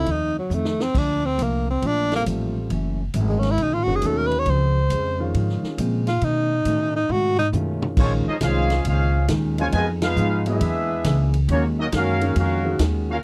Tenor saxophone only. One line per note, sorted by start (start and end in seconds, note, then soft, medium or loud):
0.00 0.12 E4 medium
0.11 0.38 D#4 medium
0.39 0.55 F#3 medium
0.54 0.83 A3 medium
0.82 0.99 C4 medium
0.98 1.27 D4 medium
1.25 1.44 C4 medium
1.43 1.69 A#3 medium
1.70 1.88 C4 medium
1.86 2.14 D4 loud
2.16 2.23 A#3 medium
3.29 3.41 G#3 medium
3.39 3.53 C#4 medium
3.51 3.64 E4 loud
3.62 3.75 D#4 medium
3.73 3.85 F4 medium
3.83 3.97 F#4 medium
3.96 4.08 G#4 medium
4.06 4.19 A4 medium
4.17 4.28 A#4 medium
4.27 4.40 B4 medium
4.39 4.52 C#5 loud
4.50 5.36 C5 medium
6.08 6.26 F4 medium
6.24 6.95 D#4 medium
6.96 7.13 D#4 medium
7.12 7.38 F#4 loud
7.39 7.48 D#4 loud